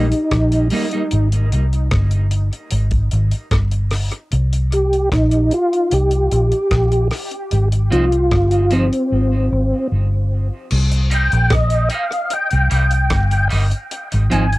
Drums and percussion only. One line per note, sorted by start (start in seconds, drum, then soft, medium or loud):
0.12 closed hi-hat soft
0.31 kick medium
0.31 cross-stick loud
0.31 closed hi-hat medium
0.52 closed hi-hat soft
0.70 open hi-hat medium
0.91 closed hi-hat medium
1.11 closed hi-hat medium
1.32 closed hi-hat medium
1.52 closed hi-hat medium
1.73 closed hi-hat soft
1.91 kick loud
1.91 cross-stick loud
1.91 closed hi-hat medium
2.11 closed hi-hat soft
2.31 closed hi-hat medium
2.53 closed hi-hat soft
2.71 closed hi-hat loud
2.91 kick medium
2.91 closed hi-hat medium
3.11 closed hi-hat medium
3.31 closed hi-hat medium
3.51 kick medium
3.51 cross-stick loud
3.51 closed hi-hat medium
3.71 closed hi-hat soft
3.91 cross-stick medium
3.91 open hi-hat medium
4.11 closed hi-hat medium
4.32 closed hi-hat medium
4.53 closed hi-hat medium
4.72 closed hi-hat medium
4.93 closed hi-hat soft
5.12 kick loud
5.12 cross-stick loud
5.12 closed hi-hat medium
5.31 closed hi-hat soft
5.51 closed hi-hat medium
5.73 closed hi-hat soft
5.91 closed hi-hat loud
6.11 closed hi-hat soft
6.31 closed hi-hat medium
6.52 closed hi-hat soft
6.71 kick medium
6.71 cross-stick loud
6.71 closed hi-hat medium
6.92 closed hi-hat soft
7.11 cross-stick medium
7.11 open hi-hat medium
7.31 closed hi-hat medium
7.51 closed hi-hat medium
7.72 closed hi-hat medium
7.92 closed hi-hat medium
8.12 closed hi-hat soft
8.31 kick loud
8.31 cross-stick loud
8.31 closed hi-hat medium
8.51 closed hi-hat medium
8.71 closed hi-hat medium
8.93 closed hi-hat soft
10.71 crash medium
10.92 closed hi-hat medium
11.11 closed hi-hat medium
11.32 closed hi-hat soft
11.50 kick loud
11.50 cross-stick loud
11.50 closed hi-hat loud
11.70 closed hi-hat medium
11.90 closed hi-hat medium
12.12 closed hi-hat soft
12.30 closed hi-hat loud
12.51 closed hi-hat medium
12.71 closed hi-hat medium
12.91 closed hi-hat medium
13.10 kick medium
13.10 cross-stick loud
13.10 closed hi-hat medium
13.31 closed hi-hat soft
13.50 open hi-hat medium
13.71 closed hi-hat medium
13.91 closed hi-hat medium
14.12 closed hi-hat medium
14.31 closed hi-hat medium
14.52 closed hi-hat soft